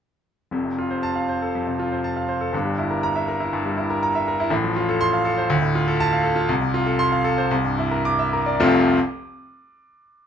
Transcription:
0.51 1.50 F1 medium
0.51 1.50 F2 medium
0.65 0.85 C3 soft
0.79 0.98 F4 medium
0.90 1.11 C5 medium
1.03 1.23 A5 medium
1.15 1.36 F5 medium
1.29 1.49 C5 medium
1.42 1.62 A4 medium
1.55 2.51 F2 medium
1.67 1.87 C3 medium
1.80 1.99 F4 medium
1.92 2.11 C5 medium
2.04 2.24 A5 medium
2.17 2.36 F5 medium
2.29 2.48 C5 medium
2.41 2.53 A4 medium
2.53 3.49 G1 medium
2.53 3.50 G2 medium
2.65 2.85 G3 medium
2.78 2.98 E4 medium
2.90 3.10 A#4 medium
3.03 3.23 A#5 loud
3.16 3.35 E5 medium
3.28 3.48 A#4 medium
3.40 3.60 E4 medium
3.53 4.49 G2 medium
3.66 3.85 G3 medium
3.78 3.97 E4 medium
3.90 4.10 A#4 medium
4.03 4.22 A#5 medium
4.15 4.34 E5 medium
4.28 4.47 A#4 medium
4.40 4.52 E4 medium
4.50 5.47 A1 medium
4.50 5.47 A2 medium
4.64 4.84 F3 medium
4.76 4.96 F4 medium
4.89 5.08 A4 medium
5.01 5.21 C6 loud
5.13 5.33 F5 medium
5.25 5.45 A4 medium
5.38 5.50 C5 medium
5.50 6.47 D2 loud
5.62 5.83 A2 medium
5.75 5.95 F4 medium
5.88 6.08 A4 medium
6.00 6.20 A5 loud
6.13 6.33 F5 medium
6.24 6.44 A4 medium
6.36 6.49 F4 medium
6.49 7.47 C2 loud
6.61 6.82 C3 medium
6.74 6.94 F4 medium
6.86 7.07 A4 medium
6.99 7.20 C6 loud
7.12 7.33 F5 medium
7.24 7.46 A4 medium
7.38 7.51 C5 medium
7.51 8.56 C2 loud
7.64 7.86 G2 medium
7.79 8.00 E4 medium
7.91 8.13 A#4 medium
8.05 8.27 D6 loud
8.19 8.41 E5 medium
8.33 8.54 A#4 medium
8.46 8.59 D5 medium
8.60 8.88 F1 medium
8.60 8.88 C2 medium
8.60 8.89 F3 medium
8.60 8.89 A3 loud
8.60 8.89 C4 medium
8.60 8.89 F4 medium

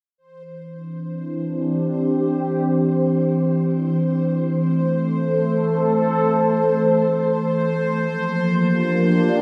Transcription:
0.18 8.05 E3 medium
0.18 9.42 C5 medium
0.48 8.99 C4 medium
0.48 4.78 D4 medium
1.15 5.33 G4 medium
1.57 9.42 C5 medium
4.34 8.05 A3 medium
4.78 8.05 A4 medium
8.05 9.42 F3 medium
8.17 9.42 A#3 medium
8.26 9.42 A#4 medium
8.45 9.42 G4 medium
8.52 9.42 D4 medium

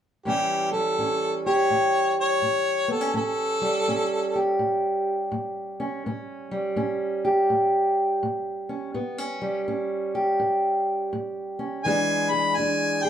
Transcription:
0.25 0.92 A2 medium
0.25 3.76 E3 medium
0.25 0.73 G3 medium
0.25 0.99 C#4 medium
0.25 0.69 G4 medium
0.72 3.61 G3 medium
0.72 1.40 A4 medium
0.99 1.65 A2 medium
0.99 2.88 C#4 medium
1.46 3.17 G4 medium
1.46 2.14 C#5 medium
1.70 2.37 A2 medium
2.20 2.87 C#5 loud
2.42 3.09 A2 medium
2.88 3.01 B3 soft
2.88 3.14 A4 medium
3.01 3.13 C#4 soft
3.14 3.82 A2 medium
3.14 3.88 C#4 medium
3.14 4.57 A4 medium
3.62 6.51 G3 medium
3.88 4.55 A2 medium
3.88 5.79 C#4 medium
4.35 6.09 G4 medium
4.59 5.26 A2 medium
5.32 5.99 A2 medium
5.80 6.06 C#4 medium
6.06 6.72 A2 medium
6.06 6.76 C#4 medium
6.51 9.40 G3 medium
6.76 7.44 A2 medium
6.76 8.68 C#4 medium
7.25 8.92 G4 medium
7.50 8.17 A2 medium
8.23 8.89 A2 medium
8.69 8.92 C#4 medium
8.94 9.61 A2 medium
8.94 9.18 B3 medium
9.18 9.66 C#4 soft
9.42 11.85 G3 medium
9.68 10.34 A2 medium
9.68 11.58 C#4 medium
10.15 11.82 G4 medium
10.40 11.06 A2 medium
11.13 11.79 A2 medium
11.59 11.81 C#4 medium
11.84 12.52 E2 medium
11.84 13.10 E3 medium
11.84 12.31 G#3 medium
11.84 12.58 D4 medium
11.84 13.03 G#4 medium
11.84 12.32 G#5 loud
12.30 13.10 G#3 medium
12.30 12.57 B5 medium
12.56 13.10 E2 medium
12.56 13.10 D4 medium
12.56 13.04 G#5 medium
13.02 13.10 G#4 medium
13.02 13.10 G5 medium

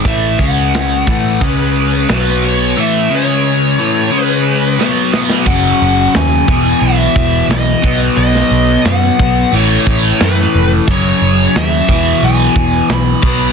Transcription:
0.05 0.37 A1 medium
0.05 0.38 A2 medium
0.05 0.38 E3 medium
0.05 0.39 A3 medium
0.05 0.38 E5 loud
0.05 kick loud
0.05 closed hi-hat medium
0.39 1.03 C#2 loud
0.39 1.06 C#3 medium
0.39 1.07 G#3 medium
0.39 1.07 C#4 medium
0.39 1.08 F#5 loud
0.39 kick loud
0.39 closed hi-hat medium
0.74 snare loud
0.74 closed hi-hat medium
1.07 1.38 A1 medium
1.07 1.40 A2 medium
1.07 1.41 E3 medium
1.07 1.41 A3 medium
1.07 1.43 F#5 medium
1.07 kick loud
1.07 closed hi-hat medium
1.41 2.05 C#2 medium
1.41 2.08 C#3 medium
1.41 2.08 G#3 medium
1.41 2.09 C#4 medium
1.41 2.44 B4 medium
1.41 kick loud
1.41 closed hi-hat medium
1.76 closed hi-hat medium
2.09 2.73 B1 medium
2.09 2.76 B2 medium
2.09 2.76 F#3 medium
2.09 2.76 B3 medium
2.09 snare loud
2.09 closed hi-hat medium
2.42 2.79 C#5 medium
2.42 closed hi-hat medium
2.77 3.09 A2 medium
2.77 3.10 E3 medium
2.77 3.10 A3 medium
2.77 3.13 E5 medium
3.10 3.77 C#3 medium
3.10 3.77 G#3 medium
3.10 3.77 C#4 medium
3.15 4.23 C#5 medium
3.79 4.11 A2 medium
3.79 4.12 E3 medium
3.79 4.12 A3 medium
4.12 4.79 C#3 medium
4.12 4.79 G#3 medium
4.12 4.79 C#4 medium
4.23 4.78 B4 medium
4.79 5.12 B2 medium
4.79 5.13 F#3 medium
4.79 5.13 B3 medium
4.79 snare medium
5.14 5.47 B2 loud
5.14 5.47 F#3 loud
5.14 5.47 B3 loud
5.14 snare medium
5.29 snare medium
5.46 5.71 F#1 loud
5.46 6.46 F#2 medium
5.46 6.48 C#3 loud
5.46 6.17 F#5 medium
5.46 kick loud
5.46 crash loud
5.51 6.49 F#3 loud
5.82 6.06 F#1 medium
6.14 6.40 D#2 loud
6.14 6.79 G#5 medium
6.14 snare loud
6.14 open hi-hat medium
6.47 6.73 E1 medium
6.47 7.81 E2 medium
6.47 7.81 B2 medium
6.47 kick loud
6.52 7.83 E3 medium
6.81 7.06 B1 medium
6.81 7.45 E5 loud
6.81 open hi-hat medium
7.16 7.40 E1 medium
7.16 kick medium
7.48 7.73 B1 medium
7.48 7.98 D#5 medium
7.48 snare loud
7.48 open hi-hat medium
7.82 8.08 B1 loud
7.82 9.16 B2 loud
7.82 9.17 F#3 loud
7.82 9.18 B3 loud
7.82 kick loud
8.17 8.42 B1 loud
8.17 8.81 D#5 medium
8.17 open hi-hat medium
8.35 snare soft
8.51 8.76 B1 loud
8.85 9.10 F#2 loud
8.85 9.55 F#5 medium
8.85 snare loud
8.85 open hi-hat medium
9.19 9.43 B1 medium
9.19 9.52 B2 medium
9.19 9.52 F#3 medium
9.19 9.51 B3 medium
9.19 kick medium
9.53 9.77 A1 loud
9.53 10.85 A2 medium
9.53 10.86 E3 medium
9.53 10.87 A3 loud
9.53 10.23 C#5 loud
9.53 open hi-hat medium
9.87 10.11 A1 medium
9.87 kick medium
10.20 10.45 F#2 medium
10.20 10.69 B4 medium
10.20 snare loud
10.20 open hi-hat medium
10.55 10.79 F1 loud
10.87 11.12 F#1 loud
10.87 11.87 F#2 loud
10.87 11.88 C#3 medium
10.87 kick loud
10.87 open hi-hat medium
10.91 11.89 F#3 medium
10.91 11.59 C#5 loud
11.22 11.46 F#1 loud
11.55 11.80 D#2 medium
11.55 12.25 E5 loud
11.55 snare loud
11.55 open hi-hat medium
11.88 12.13 E1 medium
11.88 13.22 E2 medium
11.88 13.22 B2 loud
11.88 kick loud
11.93 13.24 E3 loud
12.22 12.47 B1 loud
12.22 12.92 G#5 loud
12.22 open hi-hat medium
12.56 12.80 E1 medium
12.56 kick medium
12.89 13.14 B1 medium
12.89 13.52 B5 loud
12.89 snare loud
12.89 open hi-hat medium
13.22 13.47 B1 medium
13.22 13.52 B2 medium
13.22 13.52 F#3 loud
13.22 kick loud
13.22 crash loud
13.27 13.52 B3 loud

